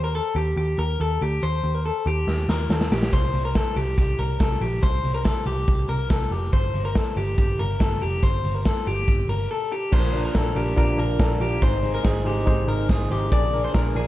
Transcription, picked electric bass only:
0.00 0.19 D#2 medium
0.35 0.53 D#2 medium
0.57 0.74 D#2 medium
0.78 0.96 D#2 medium
1.00 1.17 D#2 medium
1.21 1.39 D2 medium
1.43 1.60 D#2 medium
1.64 1.90 D#2 medium
2.06 2.24 D#2 loud
2.27 2.45 D#2 medium
2.48 2.66 D#2 medium
2.70 2.87 D#2 medium
2.91 3.08 A#1 medium
3.13 3.30 C2 medium
3.34 3.60 C2 medium
3.76 3.94 C2 medium
3.98 4.15 C2 medium
4.19 4.36 C2 medium
4.40 4.58 C2 medium
4.61 4.79 A#1 medium
4.83 5.00 C2 medium
5.04 5.30 C2 medium
5.46 5.64 C2 medium
5.68 5.85 C2 medium
5.88 6.06 C2 medium
6.10 6.28 C2 medium
6.31 6.49 F1 medium
6.53 6.70 G1 medium
6.74 7.00 G1 medium
7.17 7.34 G1 medium
7.38 7.55 G1 medium
7.59 7.77 G1 medium
7.80 7.98 G1 medium
8.02 8.19 F1 medium
8.23 8.40 G1 medium
8.45 8.71 G1 medium
8.87 9.04 G1 medium
9.08 9.25 G1 medium
9.29 9.46 G1 medium
9.93 10.27 A#1 loud
10.35 10.52 A#1 medium
10.56 10.73 A#1 medium
10.77 10.95 A#1 medium
10.98 11.16 A#1 medium
11.20 11.37 A#1 loud
11.40 11.58 A#1 medium
11.62 11.97 G#1 medium
12.05 12.22 G#1 medium
12.26 12.43 G#1 medium
12.47 12.64 G#1 medium
12.68 12.85 G#1 medium
12.89 13.07 G#1 loud
13.11 13.28 G#1 medium
13.32 13.67 A#1 loud
13.75 13.92 A#1 medium
13.95 14.07 A#1 loud

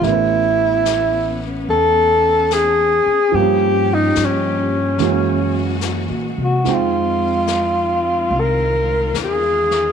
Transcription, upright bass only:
0.02 1.64 A1 medium
1.68 3.03 E2 medium
3.06 muted upright bass stroke soft
3.33 4.13 G2 medium
4.17 4.96 G2 medium
4.98 6.06 F#2 medium
6.10 6.36 A#2 soft
6.38 6.64 C3 medium
6.65 8.28 F2 medium
8.31 9.11 C2 medium
9.13 9.92 E2 medium

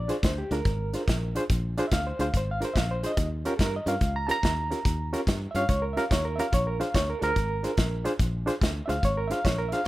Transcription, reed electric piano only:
0.00 0.23 D5 loud
0.08 0.16 D4 medium
0.08 0.16 F4 medium
0.08 0.17 G#4 medium
0.08 0.17 C5 medium
0.25 0.38 C5 medium
0.38 0.52 G4 medium
0.52 0.59 D4 medium
0.52 0.59 F4 medium
0.52 0.59 G#4 medium
0.52 1.34 A#4 medium
0.94 1.01 D4 medium
0.94 1.01 F4 medium
0.94 1.01 G#4 medium
0.94 1.01 C5 medium
1.35 1.43 D4 medium
1.35 1.43 F4 medium
1.35 1.43 G#4 medium
1.35 1.43 C5 medium
1.78 1.85 D4 medium
1.78 1.85 F4 medium
1.78 1.85 G#4 medium
1.78 1.86 C5 medium
1.87 1.91 E5 medium
1.93 2.06 F5 loud
2.07 2.20 C5 medium
2.19 2.27 D4 medium
2.19 2.27 F4 medium
2.19 2.27 G#4 medium
2.19 2.27 C5 medium
2.19 2.34 F5 medium
2.37 2.49 C5 medium
2.51 2.63 F5 medium
2.61 2.68 D4 medium
2.61 2.68 F4 medium
2.61 2.69 G#4 medium
2.61 2.69 A#4 medium
2.65 2.77 C5 medium
2.74 2.77 E5 medium
2.78 2.90 F5 medium
2.91 3.03 C5 medium
3.03 3.10 D4 medium
3.03 3.11 F4 medium
3.03 3.11 G#4 medium
3.03 3.11 C5 medium
3.03 3.28 D#5 medium
3.45 3.53 C#4 medium
3.45 3.53 F4 medium
3.45 3.53 G4 medium
3.45 3.53 A#4 medium
3.57 3.60 A4 medium
3.62 3.74 A#4 medium
3.76 3.89 D#5 medium
3.86 3.94 C#4 medium
3.86 3.94 F4 medium
3.86 3.94 G4 medium
3.86 3.95 A#4 medium
3.86 4.15 F5 medium
4.16 4.29 A#5 loud
4.27 4.36 C#4 medium
4.27 4.36 F4 medium
4.27 4.36 G4 medium
4.27 4.37 A#4 medium
4.27 4.30 A5 medium
4.31 5.12 A#5 loud
4.71 4.78 C#4 medium
4.71 4.78 F4 medium
4.71 4.78 G4 medium
4.71 4.79 A#4 medium
5.13 5.20 C#4 medium
5.13 5.20 F4 medium
5.13 5.20 G4 medium
5.13 5.21 A#4 medium
5.51 5.62 C#4 medium
5.51 5.55 E5 medium
5.55 5.62 F4 medium
5.55 5.63 G4 medium
5.55 5.63 C#5 medium
5.55 5.69 F5 loud
5.70 5.83 C#5 medium
5.82 5.96 A#4 medium
5.93 6.04 C#4 medium
5.93 6.04 F4 medium
5.93 6.04 G4 medium
5.93 5.97 E5 medium
5.97 6.04 A#4 medium
5.97 6.11 F5 medium
6.11 6.25 C#5 medium
6.25 6.38 A#4 medium
6.36 6.46 C#4 medium
6.36 6.46 F4 medium
6.36 6.46 G4 medium
6.36 6.39 E5 medium
6.40 6.46 A#4 medium
6.40 6.53 F5 medium
6.54 6.67 C#5 medium
6.67 6.80 A#4 medium
6.80 6.87 D4 medium
6.80 6.87 F4 medium
6.80 6.87 G#4 medium
6.80 6.88 C5 medium
6.80 6.94 F5 medium
6.95 7.08 C#5 medium
7.10 7.22 A#4 medium
7.19 7.29 D4 medium
7.19 7.29 F4 medium
7.19 7.30 G#4 medium
7.19 7.23 A4 medium
7.23 8.04 A#4 loud
7.23 7.30 C5 medium
7.63 7.70 D4 medium
7.63 7.71 F4 medium
7.63 7.71 G#4 medium
7.63 7.71 C5 medium
8.04 8.12 D4 medium
8.04 8.12 F4 medium
8.04 8.12 G#4 medium
8.04 8.13 C5 medium
8.46 8.54 D4 medium
8.46 8.54 F4 medium
8.46 8.54 G#4 medium
8.46 8.55 C5 medium
8.86 8.96 D4 medium
8.86 8.96 F4 medium
8.86 8.96 G#4 medium
8.86 8.96 C5 medium
8.86 8.90 E5 medium
8.90 9.03 F5 loud
9.05 9.18 C#5 medium
9.17 9.31 A#4 medium
9.28 9.37 D4 medium
9.28 9.38 F4 medium
9.28 9.38 G#4 medium
9.28 9.38 C5 medium
9.28 9.31 E5 medium
9.32 9.45 F5 loud
9.45 9.58 C#5 medium
9.58 9.72 A#4 medium
9.69 9.79 D4 medium
9.69 9.80 F4 medium
9.69 9.80 G#4 medium
9.69 9.73 E5 medium
9.73 9.80 C5 medium
9.73 9.87 F5 loud

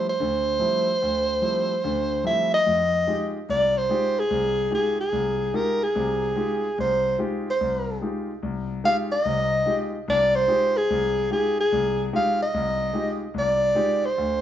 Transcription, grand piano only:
0.20 0.56 D2 medium
0.20 0.56 D3 medium
0.60 0.89 F3 soft
0.60 0.89 G3 soft
0.60 0.89 A3 soft
0.60 0.89 C4 soft
0.60 0.89 E4 medium
1.02 1.38 D2 medium
1.42 1.71 F3 soft
1.42 1.71 G3 soft
1.42 1.72 A3 soft
1.42 1.72 C4 soft
1.42 1.72 E4 medium
1.84 2.20 D2 medium
1.84 2.20 D3 medium
2.24 2.53 F3 medium
2.24 2.53 G3 soft
2.24 2.54 A3 soft
2.24 2.54 C4 soft
2.24 2.54 E4 medium
2.67 3.02 F2 medium
3.07 3.36 G#3 medium
3.07 3.36 D#4 soft
3.07 3.36 F4 soft
3.07 3.37 G4 medium
3.49 3.84 C2 medium
3.89 4.18 G#3 medium
3.89 4.19 D#4 medium
3.89 4.19 F4 soft
3.89 4.19 G4 medium
4.30 4.66 C2 medium
4.71 5.00 G#3 soft
4.71 5.00 D#4 soft
4.71 5.00 F4 soft
4.71 5.00 G4 soft
5.12 5.48 C2 medium
5.54 5.83 G#3 medium
5.54 5.83 D#4 medium
5.54 5.83 F4 medium
5.54 5.83 G4 medium
5.95 6.31 C2 medium
5.95 6.31 C3 medium
6.36 6.65 G#3 medium
6.36 6.65 D#4 soft
6.36 6.65 F4 soft
6.36 6.65 G4 medium
6.78 7.14 C2 medium
7.19 7.47 G#3 medium
7.19 7.48 D#4 medium
7.19 7.47 F4 medium
7.19 7.48 G4 medium
7.61 7.96 C2 medium
8.02 8.30 G#3 soft
8.02 8.30 D#4 soft
8.02 8.30 F4 soft
8.02 8.30 G4 soft
8.43 8.78 C2 medium
8.84 9.12 G#3 medium
8.84 9.13 D#4 soft
8.84 9.13 F4 soft
8.84 9.13 G4 medium
9.25 9.60 C2 medium
9.25 9.61 C3 medium
9.66 9.94 G#3 soft
9.66 9.94 D#4 soft
9.66 9.95 F4 soft
9.66 9.95 G4 medium
10.08 10.43 C2 medium
10.48 10.76 G#3 medium
10.48 10.77 D#4 soft
10.48 10.76 F4 medium
10.48 10.77 G4 medium
10.90 11.25 C2 medium
11.30 11.59 G#3 soft
11.30 11.59 D#4 medium
11.30 11.59 F4 soft
11.30 11.59 G4 medium
11.72 12.07 C2 medium
12.13 12.41 G#3 medium
12.13 12.41 D#4 soft
12.13 12.41 F4 medium
12.13 12.41 G4 medium
12.54 12.89 C2 medium
12.93 13.22 G#3 medium
12.93 13.23 D#4 soft
12.93 13.23 F4 soft
12.93 13.23 G4 medium
13.34 13.70 C2 medium
13.75 14.04 G#3 medium
13.75 14.05 D#4 medium
13.75 14.05 F4 soft
13.75 14.05 G4 medium
14.18 14.41 D2 medium

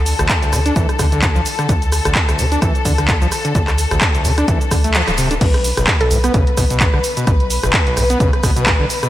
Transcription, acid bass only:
0.19 0.28 D2 loud
0.42 0.54 D2 medium
0.53 0.60 D3 medium
0.66 0.74 D4 medium
0.76 0.87 E3 medium
0.99 1.06 D3 loud
1.12 1.21 D3 loud
1.35 1.41 F3 medium
1.59 1.67 D3 medium
1.69 1.73 D3 loud
2.05 2.14 D2 loud
2.29 2.40 D2 medium
2.39 2.46 D3 medium
2.52 2.60 D4 loud
2.62 2.73 E3 medium
2.85 2.92 D3 loud
2.98 3.07 D3 loud
3.09 3.13 D3 medium
3.22 3.27 F3 medium
3.45 3.53 D3 medium
3.55 3.59 D3 loud
3.91 4.00 D2 loud
4.15 4.26 D2 medium
4.25 4.32 D3 medium
4.38 4.46 D4 medium
4.48 4.59 E3 medium
4.71 4.76 D3 medium
4.84 4.96 A3 medium
4.95 5.02 E3 medium
5.08 5.11 F3 medium
5.18 5.29 C3 loud
5.31 5.34 D4 medium
5.41 5.45 B2 loud
5.77 5.86 B1 loud
6.01 6.12 B1 medium
6.11 6.18 B2 medium
6.24 6.32 B3 loud
6.34 6.45 C#3 medium
6.57 6.65 B2 loud
6.70 6.79 B2 loud
6.94 6.99 D3 medium
7.17 7.25 B2 medium
7.27 7.31 B2 loud
7.63 7.72 B1 loud
7.87 7.98 B1 medium
7.97 8.04 B2 medium
8.10 8.18 B3 loud
8.20 8.31 C#3 medium
8.43 8.51 B2 loud
8.56 8.65 B2 loud
8.67 8.71 B2 medium
8.80 8.85 D3 medium
9.03 9.09 B2 medium

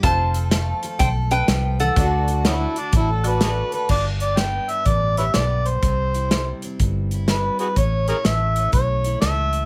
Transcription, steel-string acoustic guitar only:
0.04 1.48 F3 medium
0.36 0.53 A4 medium
0.53 1.49 A3 medium
0.53 0.83 A4 medium
0.84 1.01 A4 medium
1.02 1.31 A4 medium
1.32 1.95 A4 medium
1.49 1.80 F3 medium
1.81 1.97 E3 medium
1.97 3.88 D3 medium
1.97 2.45 A3 medium
1.97 3.88 D4 medium
1.97 2.28 F#4 medium
1.97 2.45 A4 medium
2.30 2.76 F#4 medium
2.46 3.40 A3 medium
2.46 2.93 A4 medium
2.78 3.25 F#4 medium
2.94 3.88 A2 medium
2.94 3.72 A4 medium
3.26 3.88 F#4 medium
3.42 3.88 A3 medium
3.74 3.88 A4 medium
3.90 4.85 G2 medium
3.90 4.69 D4 medium
4.23 5.17 G4 medium
4.39 5.34 B3 medium
4.70 5.81 D4 medium
4.87 5.83 G2 medium
5.19 5.81 G4 medium
5.35 5.81 B3 medium
5.83 6.80 C3 medium
5.83 6.63 C4 medium
6.15 7.11 E4 medium
6.31 7.28 G3 medium
6.65 7.75 C4 soft
6.81 7.77 G2 medium
7.14 7.76 E4 medium
7.29 7.75 G3 medium
7.78 9.65 A2 medium
7.78 8.57 C#4 medium
8.10 9.04 E4 medium
8.26 9.21 A3 medium
8.58 9.65 C#4 medium
8.72 9.65 E3 medium
9.06 9.65 E4 medium
9.22 9.65 A3 medium

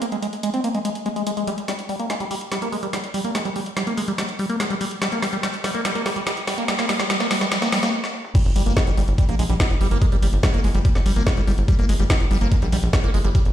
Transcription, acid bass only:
0.02 0.06 A#3 medium
0.12 0.17 G#3 medium
0.22 0.27 G#3 medium
0.43 0.50 G#3 medium
0.54 0.60 C4 medium
0.64 0.69 A#3 medium
0.75 0.79 G#3 medium
0.85 0.89 G#3 medium
1.06 1.08 G#3 loud
1.16 1.23 G#3 medium
1.27 1.31 G#3 medium
1.37 1.44 G#3 medium
1.47 1.50 G3 loud
1.68 1.73 G3 medium
1.89 1.96 G3 medium
2.00 2.06 A#3 medium
2.10 2.14 G#3 medium
2.20 2.25 G3 medium
2.31 2.35 G3 medium
2.52 2.58 G3 medium
2.62 2.69 A#3 medium
2.72 2.77 G#3 medium
2.83 2.87 G3 medium
2.93 2.98 G3 medium
3.14 3.21 G3 medium
3.24 3.31 A#3 medium
3.35 3.39 G#3 medium
3.45 3.50 G3 medium
3.56 3.60 G3 medium
3.77 3.83 G3 medium
3.87 3.94 A#3 medium
3.98 4.02 G#3 medium
4.08 4.12 G3 medium
4.18 4.23 G3 medium
4.39 4.46 G3 medium
4.50 4.56 A#3 medium
4.60 4.64 G#3 medium
4.70 4.75 G3 medium
4.81 4.85 G3 medium
5.02 5.08 G3 medium
5.12 5.19 A#3 medium
5.22 5.27 G3 medium
5.33 5.37 G3 medium
5.43 5.48 G3 medium
5.64 5.71 G3 medium
5.75 5.81 A#3 medium
5.85 5.92 G3 medium
5.95 6.02 A#3 medium
6.06 6.10 G3 medium
6.16 6.21 G3 medium
6.27 6.31 G3 medium
6.47 6.54 G3 medium
6.58 6.65 A#3 medium
6.68 6.75 G3 medium
6.79 6.85 A#3 medium
6.89 6.94 G3 medium
7.00 7.04 G3 medium
7.10 7.17 G3 medium
7.20 7.27 A#3 medium
7.31 7.35 G3 medium
7.41 7.46 G3 medium
7.52 7.58 G3 medium
7.62 7.69 A#3 medium
7.72 7.79 G3 medium
7.83 7.90 A#3 medium
8.35 8.39 G3 medium
8.56 8.63 G3 medium
8.66 8.73 A#3 medium
8.77 8.81 G#3 medium
8.87 8.92 G3 medium
8.97 9.02 G3 medium
9.18 9.25 G3 medium
9.29 9.35 A#3 medium
9.39 9.44 G#3 medium
9.50 9.54 G3 medium
9.60 9.64 G3 medium
9.81 9.88 G3 medium
9.91 9.98 A#3 medium
10.02 10.06 G#3 medium
10.12 10.17 G3 medium
10.22 10.27 G3 medium
10.43 10.50 G3 medium
10.54 10.61 A#3 medium
10.64 10.69 G#3 medium
10.75 10.79 G3 medium
10.85 10.89 G3 medium
11.06 11.13 G3 medium
11.16 11.23 A#3 medium
11.27 11.31 G#3 medium
11.37 11.42 G3 medium
11.47 11.52 G3 medium
11.68 11.75 G3 medium
11.79 11.85 A#3 medium
11.89 11.94 G#3 medium
12.00 12.04 G3 medium
12.10 12.14 G3 medium
12.31 12.38 G3 medium
12.41 12.48 A#3 medium
12.52 12.56 G#3 medium
12.62 12.67 G3 medium
12.72 12.77 G3 medium
12.93 13.00 G3 medium
13.04 13.10 A#3 medium
13.14 13.19 G#3 medium
13.25 13.29 G3 medium
13.35 13.39 G3 medium

